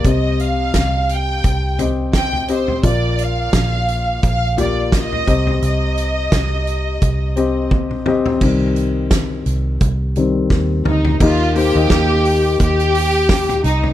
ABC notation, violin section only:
X:1
M:4/4
L:1/8
Q:"Swing 16ths" 1/4=86
K:Cm
V:1 name="Violin section"
e f2 g2 z g c | d f3 f d e2 | e6 z2 | z6 z E |
F G3 G3 E |]